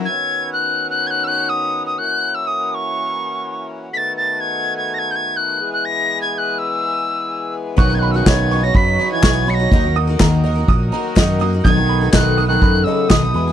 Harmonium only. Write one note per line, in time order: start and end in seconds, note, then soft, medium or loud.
0.06 1.98 D#3 medium
0.06 1.97 B3 medium
0.06 3.89 C#4 medium
0.06 5.58 F#4 medium
1.98 3.90 E3 medium
1.98 3.90 A#3 medium
3.92 5.59 D#3 medium
3.92 5.59 A3 medium
3.92 9.68 B3 medium
5.60 7.76 E3 medium
5.60 7.76 G#3 medium
5.60 7.75 G#4 medium
7.78 9.69 C#3 medium
7.78 11.61 F#3 medium
7.78 9.69 D#4 medium
9.71 13.31 D#3 medium
9.71 11.63 A#3 medium
9.71 13.32 F#4 medium
11.66 13.33 A3 medium
11.66 13.52 B3 medium
13.35 13.52 E3 medium
13.35 13.52 G#3 medium
13.35 13.52 G#4 medium